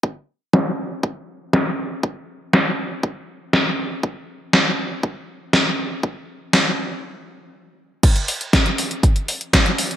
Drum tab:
CC |----------------|----------------|----------------|----------------|
HH |----------------|----------------|----------------|----------------|
SD |----o-------o---|----o-------o---|----o-------o---|----o-----------|
BD |o---o---o---o---|o---o---o---o---|o---o---o---o---|o---o-----------|

CC |x---------------|
HH |xxoxxxoxxxoxxxox|
SD |----o-------o---|
BD |o---o---o---o---|